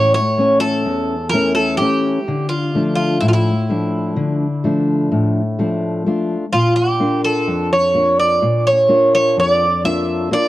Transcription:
Already playing: A2 E3 A3 C#4 C#5
0.14 C#5
0.38 E3 A3 C#4
0.60 A4
0.86 E2
1.29 E3 A3 A#4
1.34 C#4
1.55 A4
1.77 E3 A3 C#4 G4
2.28 D3
2.49 F4
2.75 F3 A3 D4
2.95 F4
3.20 A2 E4
3.28 F4
3.33 E4
3.70 F3 A3 D4
4.17 D3
4.64 F3 A3 D4
5.12 A2
5.59 F3 A3 D4
6.06 A3 D4 F4
6.53 A#2 F4
6.76 G4
7.00 A#3 D4 F4
7.24 A4
7.47 F2
7.72 C#5
7.94 A#3 D4 F4
8.20 D5
8.42 A#2
8.67 C#5
8.89 A#3 D4 F4
9.15 C#5
9.37 F2 D5
9.84 A#3 D4 F4 E5
10.31 A#3 D4 F4 D5

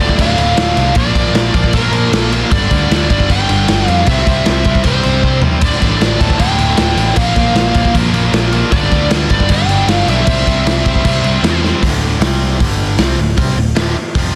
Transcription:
0.00 D1 D2 A2 D3 D5
0.09 kick
0.18 D1 D2 A2 D3 F5, kick, crash
0.37 D1 D2 A2 D3, crash
0.56 D1 D2 A2 D3, snare, crash
0.77 C2 D2 A2 D3, snare, crash
0.95 A#1 A#2 F3 A#3 D5, kick, crash
1.06 snare
1.14 A#1 A#2 F3 A#3, kick, crash
1.33 A#1 A#2 F3 A#3, snare, crash
1.54 A#1 A#2 F3 A#3, kick, crash
1.64 kick
1.73 A#1 A#2 F3 A#3 A#4, kick, crash
1.92 A#1 A#2 F3 A#3, crash
2.11 A#1 A#2 F3 A#3 A4, snare, crash
2.31 A#2 F3 A#3, crash
2.51 G1 G2 D3 G3 D5, kick, crash
2.70 D2 G2 D3 G3, kick, crash
2.90 D2 G2 D3 G3, snare, crash
3.10 G1 G2 D3 G3 D5, kick, crash
3.20 kick
3.30 G1 G2 D3 G3 G5, kick, crash
3.48 G1 G2 D3 G3, crash
3.68 G1 G2 D3 G3, snare, crash
3.88 F2 G2 D3 G3 F5, crash
4.06 C2 C3 G3 C4 E5, kick, crash
4.17 snare
4.26 C2 C3 G3 C4, kick, crash
4.46 C2 C3 G3 C4, snare, crash
4.64 C2 C3 G3 C4, kick, crash
4.75 kick
4.84 C2 C3 G3 C4 C5, kick, crash
5.03 C2 C3 G3 C4, crash
5.22 C2 C3 G3 C4, kick
5.42 C3 G3 C4, floor tom
5.61 D1 D2 A2 D3 D5, kick, crash
5.72 snare
5.81 A1 D2 A2 D3, kick, crash
6.01 A1 D2 A2 D3, snare, crash
6.18 D1 D2 A2 D3 A5, kick, crash
6.30 kick
6.39 D1 D2 A2 D3 G5, kick, crash
6.58 D1 D2 A2 D3, crash
6.77 D1 D2 A2 D3, snare, crash
6.95 A1 D2 A2 D3, crash
7.16 A#1 A#2 F3 A#3 F5, kick, crash
7.26 snare
7.36 A#1 A#2 F3 A#3, kick, crash
7.54 A#1 A#2 F3 A#3 F5, snare, crash
7.74 A#1 A#2 F3 A#3, kick, crash
7.85 kick
7.93 A#1 A#2 F3 A#3, kick, crash
8.12 A#1 A#2 F3 A#3, crash
8.33 A#1 A#2 F3 A#3, snare, crash
8.52 A#2 F3 A#3, crash
8.71 G1 G2 D3 G3 D5, kick, crash
8.82 snare
8.91 D2 G2 D3 G3, kick, crash
9.11 D2 G2 D3 G3, snare, crash
9.30 G1 G2 D3 G3 D5, kick, crash
9.40 kick
9.49 G1 G2 D3 G3 G5, kick, crash
9.66 G1 G2, crash
9.71 D3 G3
9.87 G1 G2 D3 G3 F5, snare, crash
10.06 B1 G2 D3 G3 E5, snare, crash
10.26 C2 C3 G3 C4, kick, crash
10.38 snare
10.46 C2 C3 G3 C4, kick, crash
10.65 C2 C3 G3 C4, snare, crash
10.84 C2 C3 G3 C4, kick, crash
10.95 kick
11.04 C2 C3 G3 C4, kick, crash
11.22 C2 C3 G3 C4, crash
11.42 E2 C3 G3 C4, snare, crash
11.62 C3 G3 C4, snare
11.80 D1 D2 A2 D3, kick, open hi-hat
12.20 C2 C3 G3 C4, snare, open hi-hat
12.59 G1 G2 D3 G3, kick, open hi-hat
12.98 C2 C3 G3 C4, snare, open hi-hat
13.18 D1 D2 A2
13.37 C2 C3 G3 C4, kick, open hi-hat
13.57 D1 D2 A2
13.75 D1 D2 A2 D3, snare, open hi-hat
13.96 muted distorted electric guitar stroke, muted picked electric bass stroke
14.15 F1 F2 C3 F3, kick, open hi-hat

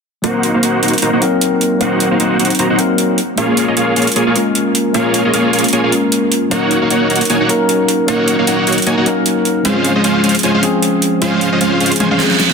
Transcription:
0.22 F#3 A#3 C4 D#4 F#4 A#4 C5 F#5, closed hi-hat
0.43 closed hi-hat
0.54 A#3 D#4 F#4 C5 F5
0.63 A#3 D#4 F#4 C5 F#5, closed hi-hat
0.83 A#3 D#4 F#4 C5 F#5, closed hi-hat
0.88 closed hi-hat
0.94 closed hi-hat
0.98 closed hi-hat
1.02 A#3 D#4 F#4 C5 A#5, closed hi-hat
1.13 A#3 D#4 F#4 C5 F#5
1.21 F#3 A#3 C4 D#4 A#4, closed hi-hat
1.41 closed hi-hat
1.61 closed hi-hat
1.79 F#3 A#3 C4 D#4 F#4 C5 F#5, closed hi-hat
1.83 A#4
2.00 closed hi-hat
2.11 A#3 D#4 F#4 C5 F5
2.20 A#3 D#4 F#4 C5 F#5, closed hi-hat
2.39 A#3 D#4 F#4 C5 F#5, closed hi-hat
2.45 closed hi-hat
2.50 closed hi-hat
2.55 closed hi-hat
2.59 A#3 D#4 F#4 C5 A#5, closed hi-hat
2.70 A#3 D#4 F#4 C5 F#5
2.78 F#3 A#3 C4 D#4 A#4, closed hi-hat
2.98 closed hi-hat
3.18 closed hi-hat
3.35 G#3 A#3 C#4 F4 G#4 C#5 F5, closed hi-hat
3.39 A#4
3.57 closed hi-hat
3.68 A#3 F4 G#4 C#5 D#5
3.77 A#3 F4 G#4 C#5 F5, closed hi-hat
3.96 A#3 F4 G#4 C#5 F5, closed hi-hat
4.02 closed hi-hat
4.07 closed hi-hat
4.12 closed hi-hat
4.16 A#3 F4 G#4 C#5 G#5, closed hi-hat
4.27 A#3 F4 G#4 C#5 F5
4.35 G#3 A#3 C#4 F4 A#4, closed hi-hat
4.55 closed hi-hat
4.75 closed hi-hat
4.92 G#3 A#3 C#4 F4 G#4 C#5 F5, closed hi-hat
4.97 A#4
5.14 closed hi-hat
5.25 A#3 F4 G#4 C#5 D#5
5.33 A#3 F4 G#4 C#5 F5, closed hi-hat
5.53 A#3 F4 G#4 C#5 F5, closed hi-hat
5.59 closed hi-hat
5.64 closed hi-hat
5.68 closed hi-hat
5.73 A#3 F4 G#4 C#5 G#5, closed hi-hat
5.84 A#3 F4 G#4 C#5 F5
5.90 G#3 A#3 C#4 F4, closed hi-hat
5.94 A#4
6.12 closed hi-hat
6.32 closed hi-hat
6.49 F#3 A#3 C#4 D#4 F#4 C#5 F#5, closed hi-hat
6.53 A#4
6.71 closed hi-hat
6.82 A#3 D#4 F#4 C#5 F5
6.90 A#3 D#4 F#4 C#5 F#5, closed hi-hat
7.10 A#3 D#4 F#4 C#5 F#5, closed hi-hat
7.16 closed hi-hat
7.21 closed hi-hat
7.25 closed hi-hat
7.30 A#3 D#4 F#4 C#5 G#5, closed hi-hat
7.41 A#3 D#4 F#4 C#5 F#5
7.48 F#3 A#3 C#4 D#4 A#4, closed hi-hat
7.69 closed hi-hat
7.88 closed hi-hat
8.06 F#3 A#3 C#4 D#4 F#4 A#4 C#5 F#5, closed hi-hat
8.28 closed hi-hat
8.39 A#3 D#4 F#4 C#5 F5
8.47 A#3 D#4 F#4 C#5 F#5, closed hi-hat
8.67 A#3 D#4 F#4 C#5 F#5, closed hi-hat
8.72 closed hi-hat
8.78 closed hi-hat
8.82 closed hi-hat
8.87 A#3 D#4 F#4 C#5 G#5, closed hi-hat
8.97 A#3 D#4 F#4 C#5 F#5
9.05 F#3 A#3 C#4 D#4 A#4, closed hi-hat
9.26 closed hi-hat
9.45 closed hi-hat
9.63 F3 G#3 C4 C#4 F4 G#4 C5 F5, closed hi-hat
9.85 closed hi-hat
9.96 G#3 C#4 F4 C5 D#5
10.04 G#3 C#4 F4 C5 F5, closed hi-hat
10.24 G#3 C#4 F4 C5 F5, closed hi-hat
10.29 closed hi-hat
10.35 closed hi-hat
10.39 closed hi-hat
10.43 G#3 C#4 F4 C5 G#5, closed hi-hat
10.54 G#3 C#4 F4 C5 F5
10.62 F3 G#3 C4 C#4 G#4, closed hi-hat
10.82 closed hi-hat
11.02 closed hi-hat
11.20 F3 G#3 C4 C#4 F4 G#4 C5 F5, closed hi-hat
11.41 closed hi-hat
11.52 G#3 C#4 F4 C5 D#5
11.61 G#3 C#4 F4 C5 F5, closed hi-hat
11.80 G#3 C#4 F4 C5 F5, closed hi-hat
11.86 closed hi-hat
11.92 closed hi-hat
11.96 closed hi-hat
12.00 G#3 C#4 F4 C5 G#5, closed hi-hat, high tom, reverse cymbal
12.11 G#3 C#4 F4 C5 F5, high tom
12.18 F3 G#3 C4 C#4, snare, closed hi-hat
12.22 G#4
12.31 snare
12.40 snare, closed hi-hat

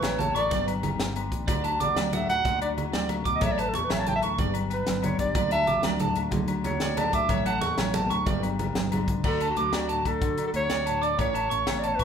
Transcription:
Already playing: A2 E3 E4 A4 B4
0.03 A1 A3 C#5, snare, closed hi-hat, high conga, low agogo
0.12 low conga
0.18 A2 E4 C#5 A5, closed hi-hat, low conga
0.35 A1 A4 D5 C#6, closed hi-hat, low agogo
0.50 G1 G2 G3 B3 D4 D5, kick, closed hi-hat, high conga, low conga
0.55 G4
0.59 low conga
0.68 D4 B4, closed hi-hat, low agogo
0.83 G3, closed hi-hat, low conga, low agogo
0.92 low conga
1.00 G1 B3, snare, closed hi-hat, high conga
1.16 D3 D4, closed hi-hat, low agogo
1.32 A1, muted nylon-string guitar stroke, kick, closed hi-hat, low conga
1.47 D2 D3 F#4 D5, kick, closed hi-hat, high conga, low conga, low agogo
1.57 low conga
1.64 D4 A5, closed hi-hat, low agogo
1.80 A1 F#3 D5 D6, closed hi-hat, low conga
1.96 D2 D5, snare, closed hi-hat, high conga, low agogo
2.06 low conga
2.13 A2 D4 E5 F#5, closed hi-hat, low conga
2.28 D2 F#4 F#5, snare, closed hi-hat, low agogo
2.44 D2 D3 F#4, kick, closed hi-hat, high conga, low conga
2.61 D4 D5, closed hi-hat, low agogo
2.77 F#3, closed hi-hat, low conga, low agogo
2.93 D2 D3 D5, snare, closed hi-hat, high conga
3.02 low conga
3.09 C#3, closed hi-hat, low conga, low agogo
3.17 low conga
3.25 D2 B2 D6, kick, closed hi-hat
3.35 D#5
3.41 A1 A2 A4 C#5 E5, kick, closed hi-hat, high conga, low conga, low agogo
3.49 D5, low conga
3.58 B4 A5, closed hi-hat, low agogo
3.68 A4
3.74 E2 E3 G4 C#6, closed hi-hat, low conga
3.84 B4
3.90 A1 C#5 E5, snare, closed hi-hat, high conga, low agogo
3.98 A5, low conga
4.06 A2 E4 G5 A5, closed hi-hat, low conga
4.15 E5
4.22 D2 A4 C#6, closed hi-hat, low agogo
4.38 G1 G2 G3 B3 D4 G4 D5, kick, closed hi-hat, high conga, low conga
4.54 D4, closed hi-hat, low agogo
4.70 G3 B4, closed hi-hat, low agogo
4.87 G1 B3, snare, closed hi-hat, high conga
4.95 low conga
5.03 D3 D4 C#5, closed hi-hat, low conga, low agogo
5.11 low conga
5.19 G1 G4 D5, kick, closed hi-hat
5.35 D2 D3 F#4 D5, kick, closed hi-hat, high conga, low conga, low agogo
5.44 low conga
5.51 D4 E5 A5, closed hi-hat, low agogo
5.67 A1 F#3 D6, closed hi-hat, low conga
5.83 D2 A3 D5, snare, closed hi-hat, high conga, low agogo
5.92 low conga
5.99 A2 D4 A5, closed hi-hat, low conga
6.15 D2 F#4, closed hi-hat, low agogo
6.30 D2 D3 F#4, kick, closed hi-hat, high conga, low conga
6.48 D4, closed hi-hat, low agogo
6.64 F#3 C#5, closed hi-hat, low conga, low agogo
6.80 D2 D5, muted nylon-string guitar stroke, snare, closed hi-hat, high conga
6.90 low conga
6.96 A2 D4 D5 A5, closed hi-hat, low conga, low agogo
7.06 low conga
7.13 D2 F#4 E5 D6, kick, closed hi-hat
7.29 A1 A2 A4 C#5, kick, closed hi-hat, high conga, low conga, low agogo
7.45 E4 F#5 A5, closed hi-hat, low conga, low agogo
7.60 E2 E3 C#6, closed hi-hat, low conga
7.78 A1 C#3 C#5, snare, closed hi-hat, high conga, low agogo
7.94 B2 A5, closed hi-hat, low conga
8.10 D2 A2 C#6, closed hi-hat, low conga, low agogo
8.26 G1 G2 G3 B3 D4 G4 D5, kick, closed hi-hat, high conga, low conga
8.43 D4, closed hi-hat, low conga, low agogo
8.59 G3, closed hi-hat, low conga, low agogo
8.68 low conga
8.75 G1 B3, snare, closed hi-hat, high conga
8.85 low conga
8.92 D3 D4, closed hi-hat, low conga, low agogo
9.01 low conga
9.07 C#2, muted nylon-string guitar stroke, kick, closed hi-hat
9.17 low conga
9.24 D2 D3 F#4 A4 D5, kick, crash, low agogo
9.40 D4 A5, closed hi-hat, low agogo
9.50 F#4
9.57 D2 F#3 A3 F#4 D6, closed hi-hat
9.73 D2 D4 D5, snare, closed hi-hat, low agogo
9.89 A2 D4 A5, closed hi-hat
10.05 D2 D4 A4, kick, closed hi-hat, low agogo
10.21 D3 F#4, kick, closed hi-hat
10.38 D4, closed hi-hat, low agogo
10.47 A4
10.54 D2 F#3 A3 C#5, closed hi-hat, low agogo
10.70 D2 D4 D5, snare, closed hi-hat
10.86 A2 A5, closed hi-hat, low agogo
11.02 D4 D5 D6, closed hi-hat
11.17 A1 A2 E3 C#4 E4 A4 C#5, kick, closed hi-hat, low agogo
11.33 E4 A5, closed hi-hat, low agogo
11.50 A1 E3 C#4 C#6, closed hi-hat
11.66 A1 C#3 C#5, snare, closed hi-hat, low agogo
11.79 B2 D5
11.84 C#5 A5, closed hi-hat
11.95 A1 B4, low agogo
11.99 A2 C#6, kick, closed hi-hat

